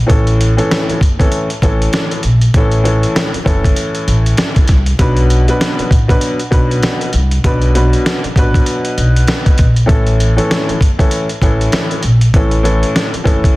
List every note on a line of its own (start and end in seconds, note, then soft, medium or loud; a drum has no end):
0.06 0.57 A1 loud
0.06 0.52 A2 medium
0.06 0.53 E3 medium
0.06 0.53 C#4 medium
0.06 0.53 A4 loud
0.06 kick loud
0.06 closed hi-hat medium
0.27 closed hi-hat soft
0.41 closed hi-hat medium
0.57 0.98 A2 medium
0.57 0.98 E3 medium
0.57 0.98 C#4 medium
0.57 0.98 A4 loud
0.57 closed hi-hat medium
0.71 snare loud
0.71 closed hi-hat loud
0.89 muted upright bass stroke soft
0.89 closed hi-hat medium
1.01 1.25 F#1 medium
1.01 kick loud
1.01 closed hi-hat medium
1.19 1.47 A2 medium
1.19 1.47 E3 medium
1.19 1.47 C#4 medium
1.19 1.48 A4 loud
1.19 kick medium
1.19 closed hi-hat medium
1.32 closed hi-hat loud
1.50 closed hi-hat medium
1.62 1.86 A1 loud
1.62 2.20 A2 medium
1.62 2.20 E3 medium
1.62 2.20 C#4 medium
1.62 2.20 A4 loud
1.62 kick medium
1.62 closed hi-hat medium
1.82 closed hi-hat medium
1.93 snare loud
1.93 closed hi-hat medium
2.11 closed hi-hat medium
2.23 2.47 A#1 medium
2.23 closed hi-hat medium
2.41 closed hi-hat medium
2.54 3.02 A1 loud
2.54 2.82 A2 medium
2.54 2.83 E3 medium
2.54 2.83 C#4 medium
2.54 2.84 A4 loud
2.54 kick loud
2.54 closed hi-hat medium
2.72 closed hi-hat medium
2.84 3.29 A2 loud
2.84 3.29 E3 medium
2.84 3.29 C#4 medium
2.84 3.30 A4 loud
2.84 closed hi-hat medium
3.03 closed hi-hat medium
3.16 snare loud
3.16 closed hi-hat loud
3.34 muted upright bass stroke soft
3.34 closed hi-hat soft
3.44 3.70 F#1 medium
3.44 4.73 A2 medium
3.44 4.73 E3 medium
3.44 4.73 C#4 medium
3.44 4.74 A4 loud
3.44 kick loud
3.44 closed hi-hat medium
3.64 kick medium
3.64 closed hi-hat medium
3.76 closed hi-hat loud
3.95 closed hi-hat medium
4.07 4.31 A1 medium
4.07 closed hi-hat medium
4.26 closed hi-hat medium
4.37 snare loud
4.37 closed hi-hat medium
4.56 kick medium
4.56 closed hi-hat medium
4.68 4.93 C2 medium
4.68 kick medium
4.68 snare soft
4.68 closed hi-hat medium
4.86 closed hi-hat soft
4.99 5.47 B1 loud
4.99 5.43 B2 medium
4.99 5.44 F#3 medium
4.99 5.44 D4 medium
4.99 5.44 B4 loud
4.99 kick loud
4.99 closed hi-hat medium
5.17 closed hi-hat soft
5.30 closed hi-hat medium
5.48 5.88 B2 loud
5.48 5.88 F#3 medium
5.48 5.89 D4 medium
5.48 5.89 B4 loud
5.48 closed hi-hat medium
5.61 snare loud
5.61 closed hi-hat loud
5.79 muted upright bass stroke soft
5.79 closed hi-hat medium
5.91 6.15 A1 medium
5.91 kick loud
5.91 closed hi-hat medium
6.08 6.36 B2 medium
6.08 6.37 F#3 medium
6.08 6.37 D4 medium
6.08 6.37 B4 loud
6.08 kick loud
6.08 closed hi-hat medium
6.21 closed hi-hat loud
6.40 closed hi-hat medium
6.51 6.76 B1 medium
6.51 7.09 B2 loud
6.51 7.09 F#3 medium
6.51 7.09 D4 medium
6.51 7.10 B4 medium
6.51 kick medium
6.51 closed hi-hat medium
6.71 closed hi-hat medium
6.83 snare loud
6.83 closed hi-hat medium
7.01 closed hi-hat medium
7.13 7.37 C2 loud
7.13 closed hi-hat medium
7.31 closed hi-hat soft
7.44 7.92 B1 loud
7.44 7.73 B2 medium
7.44 7.73 F#3 medium
7.44 7.73 D4 medium
7.44 7.74 B4 loud
7.44 kick loud
7.44 closed hi-hat medium
7.62 closed hi-hat soft
7.75 8.19 B2 loud
7.75 8.19 F#3 medium
7.75 8.20 D4 medium
7.75 8.20 B4 loud
7.75 closed hi-hat medium
7.93 closed hi-hat medium
8.06 snare loud
8.06 closed hi-hat loud
8.24 muted upright bass stroke soft
8.24 closed hi-hat soft
8.36 8.60 A1 loud
8.36 9.64 B2 medium
8.36 9.64 F#3 medium
8.36 9.65 D4 medium
8.36 9.65 B4 loud
8.36 kick loud
8.36 closed hi-hat medium
8.54 kick medium
8.54 closed hi-hat medium
8.66 closed hi-hat medium
8.85 closed hi-hat medium
8.97 9.21 B1 medium
8.97 closed hi-hat medium
9.16 closed hi-hat medium
9.27 snare loud
9.27 closed hi-hat medium
9.46 kick medium
9.46 closed hi-hat medium
9.58 9.83 A#1 medium
9.58 kick loud
9.58 closed hi-hat medium
9.76 closed hi-hat medium
9.86 10.37 A1 loud
9.86 10.32 A2 medium
9.86 10.32 E3 medium
9.86 10.32 C#4 medium
9.86 10.33 A4 loud
9.86 kick loud
9.86 closed hi-hat medium
10.07 closed hi-hat soft
10.20 closed hi-hat medium
10.36 10.77 A2 medium
10.36 10.77 E3 medium
10.36 10.78 C#4 medium
10.36 10.78 A4 loud
10.36 closed hi-hat medium
10.51 snare loud
10.51 closed hi-hat loud
10.69 muted upright bass stroke soft
10.69 closed hi-hat soft
10.81 11.04 F#1 medium
10.81 kick loud
10.81 closed hi-hat medium
10.98 11.26 A2 medium
10.98 11.27 E3 medium
10.98 11.27 C#4 medium
10.98 11.27 A4 loud
10.98 kick medium
10.98 closed hi-hat medium
11.11 closed hi-hat loud
11.29 closed hi-hat medium
11.42 11.66 A1 medium
11.42 11.99 A2 medium
11.42 11.99 E3 medium
11.42 12.00 C#4 medium
11.42 12.00 A4 loud
11.42 kick medium
11.42 closed hi-hat medium
11.61 closed hi-hat medium
11.72 snare loud
11.72 closed hi-hat medium
11.91 closed hi-hat medium
12.03 12.27 A#1 medium
12.03 closed hi-hat medium
12.21 closed hi-hat medium
12.34 12.81 A1 loud
12.34 12.61 A2 medium
12.34 12.62 E3 medium
12.34 12.63 C#4 medium
12.34 12.63 A4 loud
12.34 kick loud
12.34 closed hi-hat medium
12.51 closed hi-hat soft
12.63 13.08 A2 loud
12.63 13.08 E3 medium
12.63 13.09 C#4 medium
12.63 13.09 A4 loud
12.63 closed hi-hat medium
12.83 closed hi-hat medium
12.96 snare loud
12.96 closed hi-hat loud
13.14 muted upright bass stroke soft
13.14 closed hi-hat medium
13.24 13.49 F#1 medium
13.24 13.56 A2 loud
13.24 13.56 E3 medium
13.24 13.56 C#4 medium
13.24 13.56 A4 loud
13.24 kick medium
13.24 closed hi-hat medium
13.44 kick medium
13.44 closed hi-hat medium